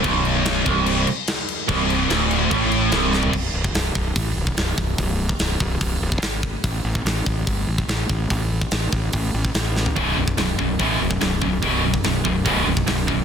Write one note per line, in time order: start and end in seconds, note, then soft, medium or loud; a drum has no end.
0.04 0.62 B0 medium
0.04 0.65 B1 loud
0.04 kick medium
0.04 crash medium
0.25 crash medium
0.45 snare loud
0.45 crash medium
0.66 1.04 C1 medium
0.66 1.06 C2 medium
0.66 kick loud
0.66 crash medium
0.86 crash medium
1.07 crash medium
1.27 snare loud
1.27 crash medium
1.48 crash medium
1.69 2.07 C1 loud
1.69 2.09 C2 loud
1.69 kick loud
1.69 crash medium
1.90 crash medium
2.10 2.48 D1 medium
2.10 2.50 D2 loud
2.10 snare loud
2.10 crash medium
2.31 crash medium
2.51 2.89 A1 medium
2.51 2.92 A2 loud
2.51 kick loud
2.51 crash medium
2.72 crash medium
2.91 3.30 C1 loud
2.91 3.33 C2 loud
2.91 snare loud
2.91 crash medium
3.13 snare medium
3.23 floor tom medium
3.33 3.49 B0 medium
3.33 kick loud
3.33 crash loud
3.53 3.70 B0 medium
3.64 kick medium
3.74 3.91 B0 medium
3.74 snare loud
3.74 open hi-hat medium
3.95 4.11 B0 medium
3.95 kick medium
4.16 4.32 A1 loud
4.16 kick loud
4.16 open hi-hat medium
4.36 4.53 B0 medium
4.47 kick medium
4.57 4.73 B0 medium
4.57 snare loud
4.57 open hi-hat medium
4.78 4.94 B0 medium
4.78 kick medium
4.98 5.31 B0 medium
4.98 kick loud
4.98 open hi-hat medium
5.29 kick medium
5.39 5.56 B0 medium
5.39 snare loud
5.39 open hi-hat medium
5.60 5.77 B0 medium
5.60 kick medium
5.81 5.97 B0 medium
5.81 kick loud
5.81 open hi-hat medium
6.02 6.18 B0 medium
6.12 kick medium
6.21 6.55 G#1 medium
6.21 snare loud
6.21 open hi-hat soft
6.43 kick medium
6.64 6.80 A1 loud
6.64 kick loud
6.64 open hi-hat medium
6.84 7.01 A1 medium
6.95 kick medium
7.05 7.21 A1 medium
7.05 snare loud
7.05 open hi-hat medium
7.26 7.43 A1 medium
7.26 kick medium
7.47 7.63 G1 medium
7.47 kick loud
7.47 open hi-hat medium
7.67 7.84 A1 medium
7.78 kick medium
7.88 8.04 A1 medium
7.88 snare loud
7.88 open hi-hat medium
8.09 8.26 A1 medium
8.09 kick medium
8.30 8.63 A1 medium
8.30 kick medium
8.30 open hi-hat soft
8.61 kick medium
8.71 8.88 A1 medium
8.71 snare loud
8.71 open hi-hat medium
8.93 9.09 A1 medium
8.93 kick medium
9.13 9.30 A1 medium
9.13 kick loud
9.13 open hi-hat medium
9.34 9.50 A1 medium
9.45 kick medium
9.54 9.87 A1 medium
9.54 snare loud
9.54 open hi-hat medium
9.76 snare medium
9.86 floor tom medium
9.96 10.13 B0 medium
9.96 10.16 B1 medium
9.96 10.16 F#2 loud
9.96 10.16 B2 loud
9.96 kick loud
9.96 open hi-hat soft
10.17 10.34 B0 medium
10.17 10.35 B1 medium
10.17 10.36 F#2 medium
10.28 kick medium
10.37 10.54 B0 medium
10.37 10.56 B1 medium
10.37 10.56 F#2 medium
10.37 snare loud
10.37 open hi-hat medium
10.59 10.75 B0 medium
10.59 10.77 B1 medium
10.59 10.77 F#2 medium
10.59 kick medium
10.79 10.96 A1 medium
10.79 10.99 B1 medium
10.79 10.99 F#2 medium
10.79 10.99 B2 medium
10.79 kick loud
10.79 open hi-hat medium
11.00 11.17 B0 medium
11.00 11.19 B1 medium
11.00 11.19 F#2 medium
11.11 kick medium
11.21 11.38 B0 medium
11.21 11.39 B1 medium
11.21 11.40 F#2 medium
11.21 snare loud
11.21 open hi-hat medium
11.41 11.58 B0 medium
11.41 11.60 B1 medium
11.41 11.61 F#2 medium
11.41 kick medium
11.62 11.95 B0 loud
11.62 11.82 B1 medium
11.62 11.82 F#2 loud
11.62 11.83 B2 loud
11.62 kick loud
11.62 open hi-hat medium
11.83 12.02 B1 medium
11.83 12.02 F#2 medium
11.94 kick medium
12.04 12.21 B0 medium
12.04 12.23 B1 medium
12.04 12.23 F#2 medium
12.04 snare loud
12.04 open hi-hat medium
12.25 12.41 B0 medium
12.25 12.44 B1 medium
12.25 12.44 F#2 medium
12.25 kick medium
12.46 12.62 B0 medium
12.46 12.65 B1 medium
12.46 12.66 F#2 medium
12.46 12.66 B2 loud
12.46 kick loud
12.46 open hi-hat medium
12.67 12.83 B0 medium
12.67 12.86 B1 medium
12.67 12.86 F#2 medium
12.77 kick medium
12.87 13.20 B0 medium
12.87 13.06 B1 medium
12.87 13.06 F#2 medium
12.87 snare loud
12.87 open hi-hat medium
13.08 13.25 B1 medium
13.08 13.25 F#2 medium
13.08 kick medium